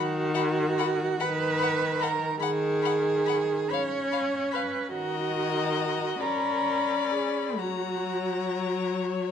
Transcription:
Already playing: D#3 F#4
0.34 F#5 B5
0.78 F#5 B5
1.20 D#3 B4 F#5 B5
1.59 F#5 B5
2.00 A#4 F#5 B5
2.40 D#3 G#4 F#5 B5
2.82 F#5 B5
3.26 F#5 B5
3.70 C#4 C#5 F5 B5
4.11 F5 B5
4.51 B4 F5 B5
4.93 D#3 F#4 D#5 A#5
6.21 C#4 A#4 D5 B5
7.11 G#4
7.58 F#3 F#4 C#5 A#5
9.12 C#5

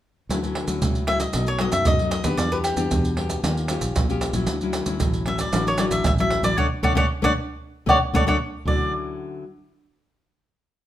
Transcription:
0.29 D2 D3 F#3 C#4 E4, pandeiro, maracas, surdo
0.43 F#3 C#4 E4, pandeiro, maracas, surdo
0.55 pandeiro
0.68 D2 F#3 C#4 E4, pandeiro, maracas
0.82 C#2 A2, pandeiro, maracas, surdo
0.95 pandeiro, maracas
1.07 F#3 C#4 E4 E5, pandeiro
1.20 D#5, pandeiro, maracas, surdo
1.33 B1 B2 F#3 A3 D#4, pandeiro, maracas, surdo
1.46 C#5, pandeiro, maracas
1.59 F#3 A3 D#4 D#5, pandeiro
1.72 F#2 E5, pandeiro, maracas, surdo
1.85 F#2 D#5, pandeiro, maracas, surdo
1.99 F#3 A3 D#4, pandeiro, maracas
2.11 D#5, pandeiro, maracas
2.24 D#2 B3 D4 G4 B4, pandeiro, maracas, surdo
2.37 E2 E3 D5, pandeiro, maracas, surdo
2.52 B3 D4 G4 B4, pandeiro, maracas, surdo
2.64 G4, pandeiro, maracas
2.77 E2 B3 D4 G4, pandeiro, maracas
2.91 E2 B2, pandeiro, maracas, surdo
3.05 pandeiro, maracas
3.17 B3 D4 G4, pandeiro
3.30 pandeiro, maracas, surdo
3.43 D#2 D#3 C#4 F4 G4, pandeiro, maracas, surdo
3.57 pandeiro, maracas
3.68 C#4 F4 G4, pandeiro, maracas
3.81 A#1, pandeiro, maracas, surdo
3.96 A#1 A#2, pandeiro, maracas, surdo
4.09 C#4 F4 G4, pandeiro, maracas
4.21 pandeiro, maracas
4.33 A#1 F#3 C#4 E4, pandeiro, maracas, surdo
4.47 D2 D3, pandeiro, maracas, surdo
4.61 F#3 C#4 E4, pandeiro, maracas, surdo
4.73 pandeiro, maracas
4.86 D2 F#3 C#4 E4, pandeiro, maracas
5.00 A1 A2, pandeiro, maracas, surdo
5.13 pandeiro, maracas
5.26 F#3 C#4 E4 E5, pandeiro
5.39 D5, pandeiro, maracas, surdo
5.53 A1 D3 F#3 C#4 E4, pandeiro, maracas, surdo
5.67 C#5, pandeiro, maracas
5.78 F#3 C#4 E4 D5, pandeiro, maracas
5.91 A1 E5, pandeiro, maracas, surdo
6.04 A1 A2 E5, pandeiro, maracas, surdo
6.18 F#3 C#4 E4 E5, pandeiro, maracas
6.31 pandeiro
6.43 A1 F#3 C#4 E4 D5, pandeiro, maracas, surdo
6.57 D2 A3 C#4 D4 C#5 D5 F#5, surdo
6.83 D2 A3 C#4 D4 C#5 D5 F#5, surdo
6.95 D2 A3 C#4 D4 C#5 D5 F#5, surdo
7.22 D2 A3 C#4 D4 C#5 D5 F#5, surdo
7.86 D2 A3 C#4 D4 C#5 D5 F#5, surdo
8.13 D2 A3 C#4 D4 C#5 D5 F#5, surdo
8.26 D2 A3 C#4 D4 C#5 D5 F#5, surdo
8.65 D2 D3 F#3 C#4 E4 D5, surdo

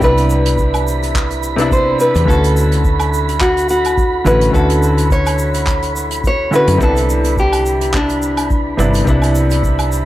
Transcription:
Already playing: B3 D4 E4 B5
0.00 C2 C3 B3 D4, kick, shaker
0.04 E4 B4
0.17 closed hi-hat, shaker
0.30 shaker
0.45 closed hi-hat, shaker
0.58 kick, shaker
0.74 closed hi-hat, low woodblock, shaker
0.87 shaker
1.03 closed hi-hat, shaker
1.15 kick, clap, shaker
1.30 closed hi-hat, shaker
1.43 shaker
1.56 C3 B3 D4, closed hi-hat, shaker
1.61 E4
1.71 C5, kick, shaker
2.00 B4, shaker
2.15 E2, closed hi-hat, shaker
2.26 D2 D3 C#4 E4 A4, kick
2.30 F#4, shaker
2.44 closed hi-hat, shaker
2.57 shaker
2.72 closed hi-hat, shaker
2.85 kick, shaker
3.00 closed hi-hat, low woodblock, shaker
3.14 shaker
3.29 closed hi-hat, shaker
3.41 F#4, kick, clap, shaker
3.57 closed hi-hat, shaker
3.69 F#4, shaker
3.84 closed hi-hat, low woodblock, shaker
3.98 kick, shaker
4.25 A1 D3 C#4 E4 F#4 B4, shaker
4.41 closed hi-hat, shaker
4.51 D2 D3 C#4 E4 A4, kick, shaker
4.56 F#4
4.69 closed hi-hat, shaker
4.83 shaker
4.98 closed hi-hat, shaker
5.11 C#5, kick, shaker
5.26 closed hi-hat, low woodblock, shaker
5.38 shaker
5.54 closed hi-hat, shaker
5.67 kick, clap, shaker
5.82 closed hi-hat, shaker
5.96 shaker
6.11 closed hi-hat, shaker
6.24 C#5, kick, shaker
6.51 D3 C#4 E4 F#4, shaker
6.55 B4
6.67 F#2, closed hi-hat, shaker
6.78 C2 C3 B3 D4, kick, shaker
6.83 E4 A4
6.96 closed hi-hat, shaker
7.10 shaker
7.24 closed hi-hat, shaker
7.37 G4, kick, shaker
7.53 closed hi-hat, low woodblock, shaker
7.66 shaker
7.81 closed hi-hat, shaker
7.94 D4, kick, clap, shaker
8.09 closed hi-hat, shaker
8.22 shaker
8.37 closed hi-hat, low woodblock, shaker
8.50 kick, shaker
8.77 G1 C3 B3 D4 E4, shaker
8.94 closed hi-hat, shaker
9.04 C2 C3 B3 D4, kick, shaker
9.09 E4
9.22 closed hi-hat, low woodblock, shaker
9.35 shaker
9.51 closed hi-hat, shaker
9.64 kick, shaker
9.79 closed hi-hat, low woodblock, shaker
9.92 shaker

